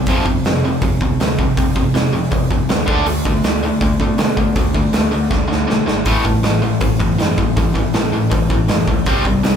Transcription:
0.06 0.19 F1 loud
0.06 0.25 F2 medium
0.06 0.25 C3 medium
0.06 0.26 F3 loud
0.06 kick loud
0.06 open hi-hat medium
0.26 0.38 F1 medium
0.26 0.43 F2 medium
0.26 0.43 C3 medium
0.26 kick medium
0.43 0.68 F1 medium
0.43 0.62 F2 medium
0.43 0.62 C3 medium
0.43 snare loud
0.43 open hi-hat medium
0.65 0.81 F2 medium
0.65 0.81 C3 medium
0.82 0.94 F1 loud
0.82 0.99 F2 medium
0.82 0.99 C3 medium
0.82 kick loud
0.82 open hi-hat soft
1.01 1.13 D2 medium
1.01 1.18 F2 medium
1.01 1.18 C3 medium
1.01 kick medium
1.20 1.44 D2 loud
1.20 1.37 F2 medium
1.20 1.37 C3 medium
1.20 snare loud
1.20 open hi-hat medium
1.39 1.56 F2 medium
1.39 1.56 C3 medium
1.39 kick medium
1.57 1.81 F1 loud
1.57 1.74 F2 medium
1.57 1.74 C3 medium
1.57 kick loud
1.57 open hi-hat medium
1.76 1.92 F2 medium
1.76 1.93 C3 medium
1.76 kick medium
1.94 2.07 F1 medium
1.94 2.11 F2 medium
1.94 2.11 C3 medium
1.94 snare loud
1.94 open hi-hat medium
2.13 2.25 F1 medium
2.13 2.30 F2 medium
2.13 2.30 C3 medium
2.31 2.44 F1 medium
2.31 2.48 F2 medium
2.31 2.48 C3 medium
2.31 kick medium
2.31 open hi-hat soft
2.50 2.63 F1 medium
2.50 2.67 F2 medium
2.50 2.67 C3 medium
2.50 kick medium
2.69 2.82 D2 medium
2.69 2.86 F2 medium
2.69 2.86 C3 medium
2.69 snare loud
2.69 open hi-hat medium
2.86 3.00 D2 medium
2.86 3.05 D3 medium
2.86 3.05 A3 medium
2.86 3.05 D4 loud
2.86 kick loud
3.06 3.19 D2 loud
3.06 3.23 D3 medium
3.06 3.24 A3 medium
3.06 open hi-hat medium
3.25 3.37 D2 medium
3.25 3.42 D3 medium
3.25 3.43 A3 medium
3.25 kick medium
3.43 3.68 D2 medium
3.43 3.61 D3 medium
3.43 3.61 A3 medium
3.43 snare loud
3.43 open hi-hat medium
3.63 3.80 D3 medium
3.63 3.80 A3 medium
3.81 3.93 D2 medium
3.81 3.98 D3 medium
3.81 3.98 A3 medium
3.81 kick loud
3.81 open hi-hat soft
4.00 4.12 B2 medium
4.00 4.17 D3 medium
4.00 4.18 A3 medium
4.00 kick medium
4.18 4.43 B2 medium
4.18 4.36 D3 medium
4.18 4.36 A3 medium
4.18 snare loud
4.18 open hi-hat medium
4.37 4.55 D3 medium
4.37 4.54 A3 medium
4.37 kick medium
4.56 4.80 D2 loud
4.56 4.73 D3 medium
4.56 4.73 A3 medium
4.56 kick loud
4.56 open hi-hat medium
4.74 4.92 D3 medium
4.74 4.92 A3 medium
4.74 kick medium
4.93 5.06 D2 medium
4.93 5.10 D3 medium
4.93 5.11 A3 loud
4.93 snare loud
4.93 open hi-hat medium
5.11 5.24 D2 medium
5.11 5.29 D3 medium
5.11 5.29 A3 medium
5.31 5.43 D2 loud
5.31 5.47 D3 medium
5.31 5.47 A3 medium
5.31 kick loud
5.31 snare medium
5.48 5.63 D2 medium
5.48 5.66 D3 medium
5.48 5.66 A3 medium
5.48 snare medium
5.68 5.82 B1 medium
5.68 5.85 D3 medium
5.68 5.86 A3 medium
5.68 snare medium
5.86 6.00 G#1 medium
5.86 6.04 D3 medium
5.86 6.04 A3 medium
5.86 snare medium
6.05 6.18 A1 loud
6.05 6.24 A2 loud
6.05 6.24 E3 medium
6.05 6.25 A3 loud
6.05 kick loud
6.05 open hi-hat medium
6.25 6.38 A1 medium
6.25 6.42 A2 medium
6.25 6.42 E3 medium
6.25 kick medium
6.43 6.68 A1 medium
6.43 6.61 A2 medium
6.43 6.61 E3 medium
6.43 snare loud
6.43 open hi-hat medium
6.62 6.80 A2 medium
6.62 6.80 E3 medium
6.80 6.94 A1 medium
6.80 6.98 A2 medium
6.80 6.98 E3 medium
6.80 kick loud
6.80 open hi-hat medium
7.00 7.12 F#2 medium
7.00 7.17 A2 medium
7.00 7.17 E3 medium
7.00 kick medium
7.18 7.43 F#2 medium
7.18 7.36 A2 medium
7.18 7.36 E3 medium
7.18 snare loud
7.18 open hi-hat medium
7.38 7.55 A2 medium
7.38 7.55 E3 medium
7.38 kick medium
7.57 7.81 A1 medium
7.57 7.73 A2 medium
7.57 7.74 E3 medium
7.57 kick loud
7.57 open hi-hat medium
7.74 7.92 A2 medium
7.74 7.92 E3 medium
7.74 kick medium
7.93 8.07 A1 medium
7.93 8.11 A2 medium
7.93 8.11 E3 medium
7.93 snare loud
7.93 open hi-hat medium
8.12 8.24 A1 loud
8.12 8.29 A2 medium
8.12 8.30 E3 medium
8.30 8.44 A1 medium
8.30 8.48 A2 medium
8.30 8.48 E3 medium
8.30 kick loud
8.30 open hi-hat medium
8.50 8.63 A1 loud
8.50 8.67 A2 medium
8.50 8.68 E3 medium
8.50 kick medium
8.68 8.81 F#1 medium
8.68 8.86 A2 medium
8.68 8.86 E3 medium
8.68 snare loud
8.68 open hi-hat medium
8.87 9.00 C#2 medium
8.87 9.05 A2 medium
8.87 9.05 E3 medium
8.87 kick medium
9.06 9.19 C2 loud
9.06 9.24 C3 medium
9.06 9.25 G3 medium
9.06 9.25 C4 medium
9.06 kick loud
9.06 open hi-hat medium
9.25 9.38 C2 medium
9.25 9.43 C3 medium
9.25 9.42 G3 medium
9.25 kick medium
9.43 9.56 C2 medium
9.43 9.56 C3 medium
9.43 9.56 G3 medium
9.43 snare loud
9.43 open hi-hat medium

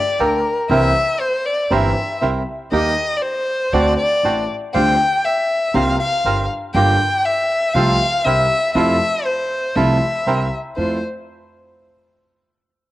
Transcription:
0.00 0.22 D5 medium
0.19 0.41 D2 medium
0.19 0.41 D3 medium
0.19 0.40 A#3 soft
0.19 0.41 G4 soft
0.19 0.41 A4 medium
0.19 0.58 A#4 medium
0.69 0.91 C2 medium
0.69 0.92 C2 medium
0.69 0.91 C3 medium
0.69 0.91 E3 medium
0.69 0.91 A#3 medium
0.69 0.91 C4 medium
0.69 0.92 C4 medium
0.69 0.91 E4 medium
0.69 0.92 G4 medium
0.69 0.91 A#4 medium
0.69 1.22 E5 medium
1.20 1.47 C5 medium
1.46 1.74 D5 medium
1.70 1.92 G1 medium
1.70 1.92 G2 medium
1.70 1.92 E3 medium
1.70 1.92 A#3 medium
1.70 1.92 C4 medium
1.70 1.92 E4 medium
1.70 1.92 G4 medium
1.70 1.92 A#4 medium
1.70 2.22 E5 medium
2.21 2.43 C2 medium
2.21 2.43 C3 medium
2.21 2.43 C4 soft
2.21 2.43 E4 soft
2.21 2.43 A#4 medium
2.71 2.93 D#2 medium
2.71 2.93 D#3 medium
2.71 2.93 G3 medium
2.71 2.93 A#3 medium
2.71 2.93 D#4 medium
2.71 2.93 G4 medium
2.71 2.94 G4 medium
2.71 3.18 D#5 medium
3.16 3.23 D5 medium
3.22 3.75 C5 medium
3.72 3.94 D2 medium
3.72 3.95 D2 medium
3.72 3.95 D3 medium
3.72 3.94 A3 medium
3.72 3.94 C4 medium
3.72 3.95 C4 medium
3.72 3.94 D4 medium
3.72 3.95 F#4 medium
3.72 3.98 D5 medium
3.98 4.45 D5 medium
4.23 4.45 A1 medium
4.23 4.45 A2 medium
4.23 4.45 C4 soft
4.23 4.45 D4 soft
4.23 4.45 F#4 soft
4.74 4.95 D2 medium
4.74 4.95 D3 medium
4.74 4.95 G3 medium
4.74 4.95 C4 medium
4.74 4.95 F4 medium
4.74 4.95 G4 medium
4.74 5.26 G5 loud
5.25 5.76 E5 medium
5.74 5.95 C2 medium
5.74 5.96 C2 medium
5.74 5.96 C3 medium
5.74 5.95 G3 medium
5.74 5.96 A#3 medium
5.74 5.96 C4 medium
5.74 5.96 F4 medium
5.74 5.96 A#4 medium
5.74 5.99 F5 medium
6.00 6.46 F5 medium
6.24 6.46 G1 medium
6.24 6.46 G2 medium
6.24 6.46 C4 soft
6.24 6.46 F4 soft
6.24 6.46 A#4 medium
6.74 6.96 G1 loud
6.74 6.96 G1 medium
6.74 6.96 G2 medium
6.74 6.96 D3 medium
6.74 6.96 G3 medium
6.74 6.96 A#3 medium
6.74 6.96 F4 medium
6.74 6.96 G4 medium
6.74 7.26 G5 loud
7.25 7.75 E5 medium
7.73 7.96 C2 medium
7.73 7.96 C3 medium
7.73 7.96 F3 medium
7.73 7.96 A3 medium
7.73 7.96 C4 medium
7.73 7.96 F4 medium
7.73 7.96 A4 medium
7.73 8.26 F5 loud
8.25 8.46 C2 medium
8.25 8.47 C2 medium
8.25 8.47 C3 medium
8.25 8.47 C4 medium
8.25 8.47 E4 soft
8.25 8.47 A#4 medium
8.25 8.74 E5 medium
8.75 8.97 F2 loud
8.75 8.97 F2 medium
8.75 8.97 C3 medium
8.75 8.97 F3 medium
8.75 8.97 A3 medium
8.75 8.97 E4 medium
8.75 8.97 F4 medium
8.75 8.97 A4 medium
8.75 9.27 E5 medium
9.25 9.77 C5 medium
9.75 9.97 C2 medium
9.75 9.98 C2 medium
9.75 9.98 C3 medium
9.75 9.98 F3 medium
9.75 9.98 A3 medium
9.75 9.97 E4 medium
9.75 9.98 E4 medium
9.75 9.98 F4 medium
9.75 9.98 A4 medium
9.75 10.52 E5 medium
10.26 10.48 C2 medium
10.26 10.48 C3 medium
10.26 10.48 C4 soft
10.26 10.48 E4 soft
10.26 10.48 A#4 medium
10.77 10.98 F2 medium
10.77 10.98 F2 soft
10.77 10.98 A3 soft
10.77 10.98 E4 soft
10.77 10.98 F4 medium
10.77 10.99 F4 soft
10.77 10.98 A4 medium
10.77 11.00 C5 medium

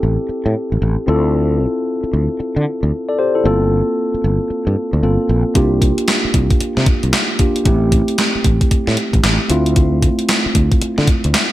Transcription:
0.00 0.16 A1 medium
0.00 1.04 C4 medium
0.00 1.04 E4 medium
0.00 1.04 G4 medium
0.00 1.05 A4 medium
0.29 muted fretless electric bass stroke soft
0.46 0.54 A2 medium
0.72 0.80 A1 medium
0.82 0.95 A1 medium
1.07 1.65 D2 loud
1.07 3.14 C4 medium
1.07 2.88 E4 medium
1.07 2.89 F4 medium
1.07 2.89 A4 medium
2.04 muted fretless electric bass stroke soft
2.13 2.27 D2 medium
2.40 muted fretless electric bass stroke soft
2.56 2.64 D3 medium
2.83 2.91 D2 medium
3.09 3.18 A4 medium
3.09 3.18 D5 medium
3.19 3.34 G4 medium
3.19 3.34 C5 medium
3.35 3.60 E4 medium
3.35 3.45 A4 medium
3.44 3.81 G1 loud
3.44 4.99 A#3 medium
3.44 4.99 C4 medium
3.44 5.00 F4 medium
3.44 5.00 A4 medium
4.14 muted fretless electric bass stroke soft
4.24 4.38 G1 medium
4.50 muted fretless electric bass stroke soft
4.67 4.75 G2 medium
4.93 5.01 D2 medium
5.02 5.17 G1 medium
5.02 5.53 A#3 medium
5.02 5.55 C4 soft
5.02 5.55 F4 soft
5.02 5.56 A4 medium
5.29 5.43 A#1 loud
5.54 5.91 C2 loud
5.54 7.35 A#3 medium
5.54 7.36 D4 medium
5.54 7.36 F4 medium
5.54 7.36 G4 medium
5.54 kick loud
5.54 closed hi-hat medium
5.82 kick medium
5.82 closed hi-hat medium
5.98 closed hi-hat soft
6.08 snare loud
6.08 clap medium
6.08 closed hi-hat medium
6.25 muted fretless electric bass stroke soft
6.34 6.48 C2 medium
6.34 kick medium
6.34 closed hi-hat medium
6.50 kick loud
6.50 closed hi-hat soft
6.61 muted fretless electric bass stroke soft
6.61 closed hi-hat medium
6.77 6.85 C3 medium
6.77 snare medium
6.86 kick loud
6.86 closed hi-hat medium
7.03 7.12 C2 medium
7.03 closed hi-hat soft
7.13 snare loud
7.13 clap medium
7.13 closed hi-hat medium
7.39 7.66 A#3 medium
7.39 7.66 D4 medium
7.39 7.66 F4 medium
7.39 7.66 G4 medium
7.39 kick medium
7.39 closed hi-hat medium
7.56 closed hi-hat medium
7.65 8.01 A1 loud
7.65 9.46 A3 medium
7.65 7.74 B3 soft
7.65 9.47 E4 medium
7.65 9.47 G4 medium
7.65 kick loud
7.65 closed hi-hat medium
7.72 9.48 C4 medium
7.92 kick medium
7.92 closed hi-hat medium
8.08 closed hi-hat medium
8.18 snare loud
8.18 clap medium
8.18 closed hi-hat medium
8.35 muted fretless electric bass stroke soft
8.44 8.58 A1 medium
8.44 kick loud
8.44 closed hi-hat medium
8.61 kick medium
8.61 closed hi-hat soft
8.71 muted fretless electric bass stroke soft
8.71 kick medium
8.71 closed hi-hat medium
8.87 8.96 A2 medium
8.87 snare medium
8.97 closed hi-hat medium
9.13 9.22 A1 medium
9.13 kick medium
9.13 closed hi-hat soft
9.24 9.37 A1 medium
9.24 snare loud
9.24 clap medium
9.24 closed hi-hat medium
9.49 10.08 D2 loud
9.49 11.52 A3 medium
9.49 11.52 C4 medium
9.49 11.52 E4 medium
9.49 11.52 F4 medium
9.49 closed hi-hat medium
9.66 closed hi-hat medium
9.76 kick loud
9.76 closed hi-hat medium
10.02 kick medium
10.02 closed hi-hat medium
10.19 closed hi-hat medium
10.29 snare loud
10.29 clap medium
10.29 closed hi-hat medium
10.46 muted fretless electric bass stroke soft
10.55 10.69 D2 medium
10.55 kick medium
10.55 closed hi-hat medium
10.72 kick medium
10.72 closed hi-hat soft
10.81 muted fretless electric bass stroke soft
10.81 closed hi-hat medium
10.98 11.06 D3 medium
10.98 snare medium
11.07 kick loud
11.07 closed hi-hat medium
11.24 11.33 D2 medium
11.24 closed hi-hat soft
11.34 snare loud
11.34 clap medium
11.34 closed hi-hat medium

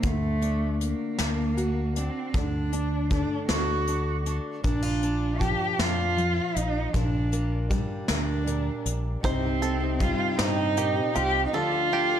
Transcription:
0.00 0.93 D2 medium
0.00 2.29 D3 medium
0.00 0.41 D4 medium
0.00 kick medium
0.00 closed hi-hat medium
0.06 0.82 A3 medium
0.42 1.19 D4 medium
0.42 closed hi-hat medium
0.81 2.00 A#3 medium
0.81 closed hi-hat medium
1.19 2.08 D2 medium
1.19 1.96 D4 soft
1.19 snare medium
1.19 closed hi-hat medium
1.57 2.30 F#4 medium
1.57 closed hi-hat medium
1.96 2.38 C4 medium
1.96 2.72 D4 medium
1.96 closed hi-hat medium
2.34 3.23 D2 medium
2.34 4.60 D3 medium
2.34 3.12 D4 medium
2.34 kick medium
2.34 closed hi-hat medium
2.73 3.48 D4 medium
2.73 closed hi-hat medium
3.10 4.60 A3 medium
3.10 3.48 D4 medium
3.10 kick medium
3.10 closed hi-hat medium
3.49 4.38 D2 medium
3.49 3.87 D4 soft
3.49 4.32 F#4 medium
3.49 snare medium
3.49 closed hi-hat medium
3.87 4.25 D4 soft
3.87 closed hi-hat medium
4.26 4.60 D4 medium
4.26 closed hi-hat medium
4.64 5.53 A#1 medium
4.64 6.90 A#2 medium
4.64 4.82 D4 soft
4.64 5.41 D4 medium
4.64 kick medium
4.64 closed hi-hat medium
4.82 5.39 F4 soft
5.03 5.79 D4 medium
5.03 closed hi-hat medium
5.39 6.16 F3 medium
5.39 6.90 F4 medium
5.39 5.81 G4 medium
5.39 kick medium
5.39 closed hi-hat medium
5.79 6.39 F2 medium
5.79 6.18 D4 medium
5.79 6.59 F4 medium
5.79 snare medium
5.79 closed hi-hat medium
6.17 6.90 F3 medium
6.17 closed hi-hat soft
6.56 6.86 A#1 medium
6.56 6.95 D#4 medium
6.56 closed hi-hat medium
6.93 7.83 A#1 medium
6.93 8.45 A#2 medium
6.93 7.70 D4 soft
6.93 7.68 D4 medium
6.93 kick medium
6.93 closed hi-hat medium
7.32 9.24 A#3 medium
7.32 closed hi-hat medium
7.70 9.19 G3 medium
7.70 8.46 D4 medium
7.70 kick medium
7.70 closed hi-hat medium
8.08 8.69 D2 medium
8.08 8.91 D4 medium
8.08 9.20 A#4 medium
8.08 snare medium
8.08 closed hi-hat medium
8.46 9.19 A#2 medium
8.46 9.24 D4 medium
8.46 closed hi-hat medium
8.86 9.15 A#1 medium
8.86 closed hi-hat medium
9.23 10.13 C2 medium
9.23 11.50 C2 medium
9.23 11.13 C3 medium
9.23 9.43 C3 medium
9.23 11.50 C3 medium
9.23 11.50 G3 medium
9.23 9.44 G3 medium
9.23 10.03 C4 medium
9.23 11.50 C4 medium
9.23 9.44 C4 medium
9.23 9.99 D#4 soft
9.23 11.50 D#4 medium
9.23 9.43 D#4 medium
9.23 9.42 G4 medium
9.23 9.62 C5 medium
9.23 11.51 C5 medium
9.23 kick medium
9.23 closed hi-hat medium
9.43 9.82 C4 soft
9.43 9.81 D#4 soft
9.43 9.79 G4 medium
9.62 11.50 C4 medium
9.62 10.38 A4 medium
9.62 closed hi-hat medium
9.80 9.99 C4 soft
9.80 10.01 D#4 soft
9.80 10.00 G4 medium
9.99 10.38 G3 medium
9.99 11.49 G3 medium
9.99 10.39 C4 medium
9.99 11.49 D#4 medium
9.99 10.39 D#4 medium
9.99 10.39 F4 medium
9.99 10.39 G4 medium
9.99 kick medium
9.99 closed hi-hat medium
10.38 10.98 G2 medium
10.38 10.76 A2 medium
10.38 10.58 C3 medium
10.38 10.58 G3 medium
10.38 10.59 C4 medium
10.38 11.17 D#4 medium
10.38 10.58 D#4 medium
10.38 10.56 G4 medium
10.38 snare medium
10.38 closed hi-hat medium
10.57 10.97 C4 soft
10.57 10.95 D#4 soft
10.57 10.94 G4 soft
10.77 11.15 A#2 medium
10.77 11.15 G4 medium
10.77 closed hi-hat medium
10.95 11.14 C4 soft
10.95 11.15 D#4 soft
10.95 11.15 G4 soft
11.13 11.46 C2 medium
11.13 11.53 C3 medium
11.13 11.53 G3 soft
11.13 11.53 C4 medium
11.13 11.54 D#4 medium
11.13 11.53 F4 medium
11.13 11.45 G4 loud
11.13 11.55 G4 medium
11.13 closed hi-hat medium
11.46 11.55 D#4 medium
11.53 12.20 D2 medium
11.53 12.20 D3 medium
11.53 11.73 D3 medium
11.53 12.20 F3 medium
11.53 11.73 F3 medium
11.53 12.20 A3 medium
11.53 11.91 D4 soft
11.53 11.73 D4 medium
11.53 12.20 D4 medium
11.53 12.20 F4 medium
11.53 11.72 F4 medium
11.53 11.92 A4 medium
11.53 11.70 A4 medium
11.53 12.20 A4 medium
11.72 12.12 D4 soft
11.72 12.10 F4 soft
11.72 12.09 A4 medium
11.92 12.20 D4 medium
11.92 12.20 G4 medium
12.10 12.20 D4 soft
12.10 12.20 F4 medium
12.10 12.20 A4 medium

